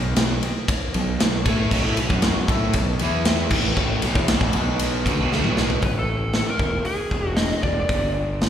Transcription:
Already playing: B1 B2 F#3
0.16 B1 B2 F#3, snare, ride
0.43 ride
0.68 kick, ride
0.94 B1 B2 F#3, ride
1.20 B1 B2 F#3, snare, ride
1.45 A2 A3 E4 A4, kick, ride
1.71 B1 B2 F#3, kick, crash
1.84 A2 A3 E4
1.97 B1 B2 F#3, ride
2.09 F#2 F#3 C#4 F#4, kick
2.22 snare, ride
2.37 B1 B2 F#3
2.48 A2 A3 E4 A4, kick, ride
2.73 B1 B2 F#3, kick, ride
2.99 E2 E3 B3 E4, ride
3.25 snare, ride
3.50 A1 A2 E3 A3, kick, crash
3.76 A1 A2 E3 A3, kick
4.02 B1 B2 F#3, ride
4.15 E2 E3 B3, kick
4.28 B1 B2 F#3, snare, ride
4.41 A1 A2 E3, kick
4.53 B1 B2 F#3 B3, ride
4.79 ride
5.05 D2 D3 A3, kick, ride
5.20 B1 B2 F#3
5.32 D2 D3 A3, snare
5.44 B1 B2 F#3 B3, mid tom
5.57 snare
5.70 floor tom
5.82 A1 B4, kick, open hi-hat
5.99 A4
6.33 A4, snare, open hi-hat
6.50 A#4
6.59 E1, kick
6.85 G#4, open hi-hat
7.11 E1, kick
7.29 F#4
7.36 D#5, snare, open hi-hat
7.51 snare
7.63 E1 D5, kick
7.89 G1, kick, open hi-hat
8.41 snare, open hi-hat

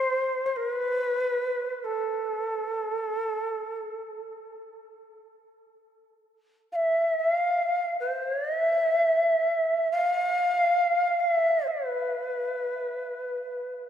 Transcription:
Already playing: C5
0.46 C5
0.56 A#4
0.69 B4
1.84 A4
6.72 E5 F5
7.20 E5
7.33 F5
8.00 C5
8.29 C#5
8.61 E5
9.92 F5
11.19 F5
11.31 E5
11.67 B4

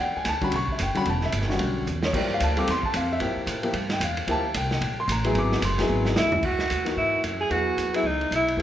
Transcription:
0.00 E2 G5
0.16 G#5, muted upright bass stroke
0.25 D2, snare, hi-hat pedal, ride
0.29 A5
0.41 D3 G3 C#4 F#4 B5, kick, ride
0.52 B1, ride
0.56 C#6
0.68 muted upright bass stroke, kick
0.72 E5
0.79 F#1, hi-hat pedal, ride
0.83 G5
0.95 D3 G3 C#4 F#4 B5, muted upright bass stroke, ride
1.05 E1 A5, ride
1.21 snare
1.26 E5
1.32 G1, hi-hat pedal, ride
1.41 snare
1.48 D3 G3 C#4 F#4, snare
1.59 B1, ride
1.87 E2, hi-hat pedal
2.03 C#5, snare
2.13 G2 F3 A#3 E4 G4, kick, crash
2.18 D5
2.34 F5
2.40 D2 A5, hi-hat pedal, ride
2.56 G3 C4 F4 A4 D6, ride
2.67 E2 C6, snare, ride
2.83 A5, kick
2.94 F2 F5, hi-hat pedal, ride
3.13 E5
3.20 G2 F3 A#3 E4 G4, ride
3.36 muted upright bass stroke
3.47 A2, hi-hat pedal, ride
3.62 F3 A#3 E4 G4, ride
3.73 G2, ride
3.90 G5, snare, ride
4.00 E2 F5, hi-hat pedal, ride
4.17 ride
4.27 D2 F3 A#3 E4 G4 A5, ride
4.54 C2 G5, hi-hat pedal, ride
4.71 snare
4.81 A#1, ride
5.00 C6
5.08 A1, hi-hat pedal, ride
5.12 A#5
5.24 F#3 B3 E4 G#4, ride
5.35 G#1 D6, ride
5.52 snare
5.62 F#1 C6, hi-hat pedal, ride
5.78 F#3 B3 E4 G#4, snare, ride
5.90 G#1
6.05 snare
6.16 D2 E4, snare, hi-hat pedal
6.32 floor tom
6.43 C#2 F#4, kick, crash
6.59 snare
6.70 D#2, hi-hat pedal, ride
6.85 E3 A#3 D#4 F#4, snare, ride
6.97 G#2 E4
7.24 F#2, hi-hat pedal, ride
7.41 G#4
7.50 E2 F#3 B3 E4 F#4 G#4, ride
7.77 D#2, hi-hat pedal, ride
7.93 F#3 B3 E4 G#4, ride
8.03 C#2 D#4
8.21 ride
8.31 B1, hi-hat pedal, ride
8.35 E4
8.48 ride
8.57 E1 F#3 B3 E4 G#4

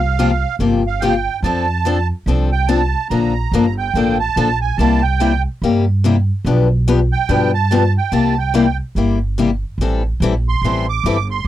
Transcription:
Already playing: C2 F5
0.19 C3 F3 A#3 F4 G4
0.59 G1 C3 F3 A#3 F4 G4
0.87 F5
1.00 C3 F3 A#3 F4 G4 G5
1.43 F2 F3 C4 D4 A4 A5
1.85 F3 C4 D4 A4
2.26 C2 F3 C4 D4 A4
2.52 G5
2.68 F3 C4 D4 A4 A5
3.10 A#1 D3 F3 A#3 D4 A4 A#5
3.52 G1 D3 F3 A#3 D4 A4
3.78 G5
3.94 A1 D3 F3 A#3 D4 A4
4.20 A5
4.36 A#1 D3 F3 A#3 D4 A4
4.61 G#5
4.77 C2 C3 G3 A#3 E4 G4 A5
5.02 G5
5.20 C3 G3 A#3 E4 G4
5.62 G2 C3 G3 A#3 E4 G4
6.04 C3 G3 A#3 E4 G4
6.45 B1 B2 F3 B3 D4 G4 B4
6.88 B2 F3 B3 D4 G4 B4
7.12 G5
7.29 G2 B2 F3 B3 D4 G4 B4
7.54 A5
7.71 B2 F3 B3 D4 G4 B4
7.98 G5
8.12 C2 C3 G3 A#3 E4 G4 A5
8.38 G5
8.54 C3 G3 A#3 E4 G4
8.95 G1 C3 G3 A#3 E4 G4
9.38 C3 G3 A#3 E4 G4
9.78 A1 E3 G3 C4
9.82 E4 A4
10.20 A#1 E3 G3 C4 E4 A4
10.49 C6
10.62 A1 E3 G3 C4 E4
10.66 A4
10.89 D6
11.04 G1 E3 G3 C4 E4 A4
11.31 C6

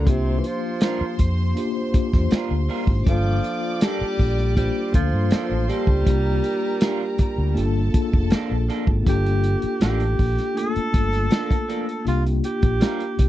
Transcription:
Already playing: D3
0.04 C2 A#3 D4 F4 G4 C5 C6, kick, closed hi-hat
0.09 C3
0.38 E3
0.44 F3, closed hi-hat
0.81 G3 D4 F4 A#4, snare, closed hi-hat
1.01 muted fingered electric bass stroke
1.19 F2, kick, closed hi-hat
1.55 A#3 D4 F4 G4, closed hi-hat
1.92 A#3 D4 F4 G4, muted fingered electric bass stroke, kick, closed hi-hat
2.13 E2, kick, snare
2.31 G3 D4 F4 A#4, muted fingered electric bass stroke, snare, closed hi-hat
2.51 D2
2.69 G3 D4 F4 A#4, open hi-hat
2.87 G#1, kick
3.05 G1 F3 A3 D4 F4 A4 D5 D6, kick, closed hi-hat
3.11 A#3
3.44 closed hi-hat
3.81 F3 G3 A#3 D4 A4, snare, closed hi-hat
4.01 muted fingered electric bass stroke
4.19 A#1, kick, open hi-hat
4.38 snare
4.55 G3 A#3 D4 F4 C5, kick, closed hi-hat
4.92 D2 F3 A#3 D4 F4 A4 C5 C6, kick, closed hi-hat
5.13 G2
5.31 F3 A#3 D4 A4, muted fingered electric bass stroke, snare, closed hi-hat
5.51 A1
5.68 F3 G3 A#3 D4 A4, closed hi-hat
5.87 C#2, kick
6.05 C2 A#3 D4 F4 G4 A#4 A#5, kick, closed hi-hat
6.44 closed hi-hat
6.81 G3 D4 F4 A#4, snare, closed hi-hat
7.18 muted fingered electric bass stroke, kick, closed hi-hat
7.38 D2
7.54 G1 A#3 D4 F4 A4 A5, closed hi-hat
7.93 A#3 D4 F4 G#4, muted fingered electric bass stroke, kick, closed hi-hat
8.02 A4
8.13 F1, kick
8.30 F3 A#3 D4 A4, muted fingered electric bass stroke, snare, closed hi-hat
8.51 A#1
8.68 F3 A#3 D4 A4, closed hi-hat
8.87 G#1, kick
9.04 G1 A#3 D4 F4 A4, kick, closed hi-hat
9.09 G4
9.26 closed hi-hat
9.44 closed hi-hat
9.62 muted fingered electric bass stroke, closed hi-hat
9.81 A1 F3 A#3 D4 G4 A4, snare, closed hi-hat
10.00 closed hi-hat
10.19 A#1, kick, open hi-hat
10.38 snare, closed hi-hat
10.54 A3 D4 F4 A4, closed hi-hat
10.61 A#3
10.76 muted fingered electric bass stroke, closed hi-hat
10.94 G1, kick, closed hi-hat
11.13 snare, closed hi-hat
11.31 F3 A#3 D4 A4, snare, closed hi-hat
11.51 kick, closed hi-hat
11.68 F3 A#3 D4 A4, closed hi-hat
11.89 closed hi-hat
12.04 C2 A#3 D4 F4 G4, closed hi-hat
12.26 closed hi-hat
12.44 G4, closed hi-hat
12.62 A#1, kick, closed hi-hat
12.80 G3 D4 F4 A#4, snare, closed hi-hat
13.00 closed hi-hat
13.19 C2, kick, closed hi-hat

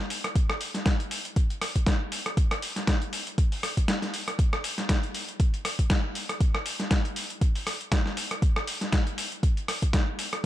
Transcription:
0.10 open hi-hat
0.24 cross-stick, closed hi-hat
0.35 kick, closed hi-hat
0.50 cross-stick
0.61 open hi-hat
0.75 snare, closed hi-hat
0.86 kick, snare, closed hi-hat
1.00 closed hi-hat
1.11 open hi-hat
1.25 closed hi-hat
1.36 kick, closed hi-hat
1.50 closed hi-hat
1.62 cross-stick, open hi-hat
1.76 kick, closed hi-hat
1.86 kick, snare, closed hi-hat
2.12 open hi-hat
2.26 cross-stick, closed hi-hat
2.37 kick, closed hi-hat
2.51 cross-stick, closed hi-hat
2.62 open hi-hat
2.76 snare, closed hi-hat
2.87 kick, snare, closed hi-hat
3.02 closed hi-hat
3.13 open hi-hat
3.27 closed hi-hat
3.38 kick, closed hi-hat
3.52 open hi-hat
3.63 cross-stick, open hi-hat
3.77 kick, closed hi-hat
3.88 snare, closed hi-hat
4.02 snare, closed hi-hat
4.14 open hi-hat
4.28 cross-stick, closed hi-hat
4.39 kick, closed hi-hat
4.53 cross-stick
4.64 open hi-hat
4.78 snare, closed hi-hat
4.89 kick, snare, closed hi-hat
5.03 closed hi-hat
5.14 open hi-hat
5.29 closed hi-hat
5.40 kick, closed hi-hat
5.54 closed hi-hat
5.65 cross-stick, open hi-hat
5.79 kick, closed hi-hat
5.90 kick, snare, closed hi-hat
6.15 open hi-hat
6.29 cross-stick, closed hi-hat
6.40 kick, closed hi-hat
6.55 cross-stick
6.66 open hi-hat
6.80 snare, closed hi-hat
6.91 kick, snare, closed hi-hat
7.05 closed hi-hat
7.16 open hi-hat
7.30 closed hi-hat
7.41 kick, closed hi-hat
7.55 open hi-hat
7.67 cross-stick, open hi-hat
7.81 closed hi-hat
7.92 kick, snare, closed hi-hat
8.06 snare
8.17 open hi-hat
8.31 cross-stick, closed hi-hat
8.42 kick, closed hi-hat
8.56 cross-stick
8.67 open hi-hat
8.81 snare, closed hi-hat
8.92 kick, snare, closed hi-hat
9.07 closed hi-hat
9.18 open hi-hat
9.32 closed hi-hat
9.43 kick, closed hi-hat
9.57 closed hi-hat
9.68 cross-stick, open hi-hat
9.82 kick, closed hi-hat
9.93 kick, snare, closed hi-hat
10.19 open hi-hat
10.33 cross-stick, closed hi-hat

